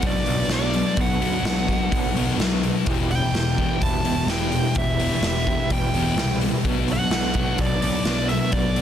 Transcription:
0.02 B1 B2 F#3 B3 D4 F#4, kick, open hi-hat
0.07 D5
0.25 B1 B2 F#3 B3 D4 F#4, open hi-hat
0.49 B1 B2 F#3 B3 D4 F#4, snare, open hi-hat
0.54 D5
0.74 B2 F#3, open hi-hat
0.96 B1 B2 F#3 B3 D4 F#4, kick, open hi-hat
1.01 F#5
1.20 B2 F#3 B3 D4 F#4, open hi-hat
1.43 B1 B2 F#3 B3 D4 F#4, snare, open hi-hat
1.67 B2 F#3 B3 D4 F#4, kick, open hi-hat
1.91 B1 B2 F#3 B3 D4 F#4, kick, open hi-hat
2.14 B1 B2 F#3 B3 D4 F#4, open hi-hat
2.19 B3
2.38 B1 B2 F#3 B3 D4 F#4, snare, open hi-hat
2.63 B2 F#3, open hi-hat
2.85 E1 E2 B2 E3 G3 E4 G4, kick, open hi-hat
3.10 E2 B2 E3 G3 E4 G4 G5, open hi-hat
3.33 E1 E2 B2 E3 G3 E4 G4, snare, open hi-hat
3.57 E2 B2 E3 G3 E4 G4, kick, open hi-hat
3.80 E1 E2 B2 E3 G3 E4 G4 A5, kick, open hi-hat
4.04 E1 E2 B2 E3 G3 E4 G4, open hi-hat
4.28 E1 E2 B2 E3 G3 E4 G4 G5, snare, open hi-hat
4.52 E2 B2, open hi-hat
4.75 E1 E2 B2 E3 G3 E4 E5, kick, open hi-hat
4.79 G4
4.99 E2 B2 E3 G3 E4 G4, open hi-hat
5.03 E3
5.22 E1 E2 B2 E3 G3 E4, snare, open hi-hat
5.26 G4 E5
5.46 E2 B2 E3 G3 E4 G4, kick, open hi-hat
5.69 E1 E2 B2 E3 G3 E4 G4 G5, kick, open hi-hat
5.93 E1 E2 B2 E3 G3 E4 G4, open hi-hat
5.97 E3
6.16 C2 E2 B2 E3 G3 E4 G4, snare, open hi-hat
6.41 E2 B2, open hi-hat
6.64 B1 B2 F#3 B3 D4 F#4, kick, open hi-hat
6.88 B2 F#3 B3 D4 F#4, open hi-hat
6.93 F#5
7.11 B1 B2 F#3 B3 D4 F#4, snare, open hi-hat
7.34 B2 F#3 B3 D4 F#4, kick, open hi-hat
7.39 B3
7.58 B1 B2 F#3 B3 D4 F#4 D5, kick, open hi-hat
7.81 B1 B2 F#3 B3 D4 F#4 D5, open hi-hat
8.05 B1 B2 F#3 B3 D4 F#4, snare, open hi-hat
8.28 B2 F#3 E5, open hi-hat
8.51 B1 B2 F#3 B3 D4 F#4 D5, kick, open hi-hat
8.75 B2 F#3 B3 D4 F#4, open hi-hat

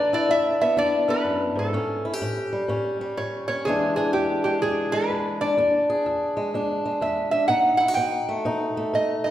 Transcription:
Already playing: E2 D4 D5
0.13 E4 D5
0.29 E2 E5
0.61 B3 E5
0.77 E2 D4 D5
1.08 B3 B4
1.25 F#2
1.56 G#2 A4
1.73 A2 C#4
2.05 E4
2.13 G4
2.22 A2
2.53 G3
2.68 A2 C#4
3.01 G3
3.17 A2 C#5
3.48 C#4 C#5
3.65 E2 E3 G#3 D4 G#4
3.96 D4 G#4
4.13 E2 G4
4.44 G#3 G4
4.62 E2 D4 G#4
4.92 G#3 B4
5.10 E2
5.41 D4 D5
5.57 E2 D4
5.90 G#4
6.06 E2
6.37 G#3
6.54 E2 D4
6.86 G#3
7.01 E2 E5
7.31 D4 E5
7.48 B2 D#4 F#5
7.77 E4 F#5
7.88 F#4
7.94 B2 G5
8.29 A3
8.45 B2 D#4
8.77 A3
8.94 B2 D#5
9.24 D#4 D#5

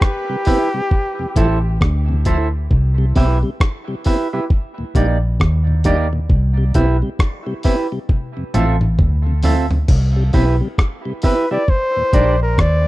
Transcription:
0.01 G4, kick, cross-stick
0.29 C3 G3
0.45 B3 C4 E4 G4 B4 E5, kick, open hi-hat
0.74 C3 G3
0.91 kick
1.19 F2 C3
1.36 A1 F3 A3 E4 A4 C5 E5, kick, closed hi-hat
1.81 D2, kick, cross-stick
2.09 F2 C3
2.25 F3 A3 E4 A4 C5 E5, kick, closed hi-hat
2.71 C2, kick
2.98 C3 G3
3.15 B1 B3 C4 E4 G4 B4 E5, kick, open hi-hat
3.43 C3 G3
3.60 kick, cross-stick
3.88 C3 G3
4.04 B3 C4 E4 G4 B4 E5, kick, open hi-hat
4.33 C3 G3 E4 G4 B4 E5
4.50 kick
4.78 D#2 A#2
4.95 A#1 G3 A#3 D4 D#4 G4 D5, kick, closed hi-hat
5.40 D#2, kick, cross-stick
5.67 D#2 A#2
5.84 G3 A#3 D4 D#4 G4 D5, kick, closed hi-hat
6.13 D#2 A#2
6.30 C2, kick
6.57 C3 G3
6.74 B1 B3 C4 E4 G4 B4 E5, kick, closed hi-hat
7.02 C3 G3
7.19 kick, cross-stick
7.47 C3 G3
7.63 B3 C4 E4 G4 B4 E5, kick, open hi-hat
7.92 C3 G3
8.09 kick, high tom
8.37 F2 C3
8.54 A1 F3 A3 C4 E4 F4 A4 E5, closed hi-hat, mid tom
8.81 mid tom
8.99 D2, kick, mid tom
9.27 F2 C3
9.43 F3 A3 C4 E4 F4 A4 E5, floor tom, open hi-hat
9.71 F2 C3, floor tom
9.88 C2, kick, crash
10.16 C3 G3
10.33 B1 B3 C4 E4 G4 B4 E5, kick, open hi-hat
10.61 C3 G3
10.78 kick, cross-stick
11.05 C3 G3
11.22 B3 C4 E4 G4 B4 E5, kick, open hi-hat
11.51 C3 G3 E4 G4 B4 D5 E5
11.68 C5, kick
11.96 D#2 A#2
12.13 A#1 G3 D4 D#4 G4 A#4 D5, kick, closed hi-hat
12.42 A#4
12.58 D#2 D5, kick, cross-stick

